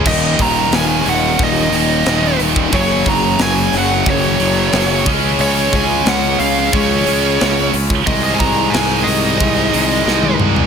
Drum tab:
CC |x---------------|----------------|----------------|----------------|
HH |--o-o-o-o-o-o-o-|o-o-o-o-o-o-o-o-|o-o-o-o-o-o-o-o-|o-o-o-o-o-o-----|
SD |----o-------o---|----o-------o---|----o-------o---|----o-------o---|
T1 |----------------|----------------|----------------|-------------o--|
T2 |----------------|----------------|----------------|--------------o-|
FT |----------------|----------------|----------------|---------------o|
BD |o-o-----o------o|o-o-----o-----o-|--o-----o------o|o-o-----o-------|